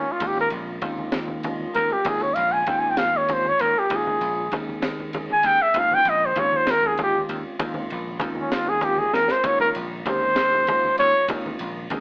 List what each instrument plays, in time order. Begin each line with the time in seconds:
Already playing: tine electric piano D#3 G#3 C4 C#4 F4, trumpet C#4
0.12 trumpet F4
0.19 slap bass D#2, tine electric piano D#3 G#3 C4 C#4 F4, kick, ride, muted conga
0.27 trumpet G4
0.37 high conga, low conga
0.41 trumpet A#4
0.50 slap bass A#1, ride
0.81 slap bass D#2, tine electric piano D#3 G#3 C4 C#4 F4, kick, ride, muted conga, low conga
0.98 high conga, low conga
1.12 slap bass D#2, snare, ride
1.28 low conga
1.43 tine electric piano D#3 G#3 C4 C#4 F4, ride, muted conga
1.60 high conga
1.74 slap bass D#2, trumpet A#4, ride, low conga
1.91 trumpet G4, low conga
2.04 slap bass D#2, tine electric piano D#3 G#3 C4 C#4 F4, trumpet G#4, kick, ride, muted conga
2.21 trumpet C#5, high conga, low conga
2.35 slap bass A#1, trumpet F5, ride
2.53 trumpet G#5
2.66 slap bass D#2, tine electric piano D#3 G#3 C4 C#4 F4, trumpet G5, kick, ride, muted conga
2.79 trumpet G#5
2.83 low conga
2.90 trumpet G5
2.97 slap bass D#2, trumpet F5, snare, ride
3.17 trumpet C#5
3.28 tine electric piano D#3 G#3 C4 C#4 F4, ride, muted conga, low conga
3.33 trumpet C5
3.45 high conga
3.49 trumpet C#5
3.59 slap bass D#2, trumpet A#4, ride
3.79 trumpet G4
3.90 slap bass D#2, tine electric piano D#3 G#3 C4 C#4 F4, kick, ride, muted conga
3.96 trumpet G#4
4.07 high conga, low conga
4.21 slap bass A#1, ride
4.52 slap bass D#2, tine electric piano D#3 G#3 C4 C#4 G#4, kick, ride, muted conga
4.69 high conga, low conga
4.82 slap bass D#2, snare, ride
5.00 low conga
5.13 tine electric piano D#3 G#3 C4 C#4 G#4, ride, muted conga, low conga
5.30 trumpet G#5, high conga
5.43 slap bass D#2, trumpet G5, ride
5.63 trumpet E5
5.74 slap bass D#2, tine electric piano D#3 G#3 C4 C#4 F4, kick, ride, muted conga
5.79 trumpet F5
5.91 trumpet G5, high conga, low conga
6.05 slap bass A#1, ride
6.10 trumpet D#5
6.26 trumpet C5
6.35 slap bass D#2, tine electric piano D#3 G#3 C4 C#4 F4, kick, ride, muted conga
6.40 trumpet C#5
6.52 high conga, low conga
6.57 trumpet C5
6.66 slap bass D#2, snare, ride
6.71 trumpet A#4
6.83 low conga
6.87 trumpet G#4
6.97 tine electric piano D#3 G#3 C4 C#4 F4, ride, muted conga, low conga
7.03 trumpet G4
7.14 high conga
7.29 slap bass D#2, ride
7.59 slap bass D#2, tine electric piano D#3 G#3 C4 C#4 F4, kick, ride, muted conga
7.74 high conga, low conga
7.90 slap bass A#1, ride
8.20 slap bass D#2, tine electric piano D#3 G#3 C4 C#4 F4, kick, ride, muted conga
8.35 high conga
8.40 trumpet C#4
8.52 slap bass D#2, trumpet F4, snare, ride
8.66 trumpet G#4, low conga
8.81 tine electric piano D#3 G#3 C4 C#4 F4, trumpet G4, ride, muted conga
8.97 trumpet G#4, high conga, low conga
9.14 slap bass D#2, trumpet A#4, snare
9.28 trumpet C5, snare
9.44 slap bass D#2, tine electric piano D#3 G#3 C4 C#4 F4, trumpet C#5, kick, ride, muted conga
9.60 trumpet A#4, high conga, low conga
9.75 slap bass A#1, ride
10.05 slap bass D#2, tine electric piano D#3 G#3 C4 C#4 G4, trumpet C5, kick, ride, muted conga
10.22 high conga, low conga
10.36 slap bass D#2, snare, ride
10.53 low conga
10.67 tine electric piano D#3 G#3 C4 C#4 F4, ride, muted conga, low conga
10.84 high conga
10.98 slap bass D#2, trumpet C#5, ride
11.28 slap bass D#2, tine electric piano D#3 G#3 C4 C#4 F4, kick, ride, muted conga
11.46 high conga, low conga
11.59 slap bass A#1, ride
11.90 slap bass D#2, tine electric piano D#3 G#3 C4 C#4 G#4, kick, ride, muted conga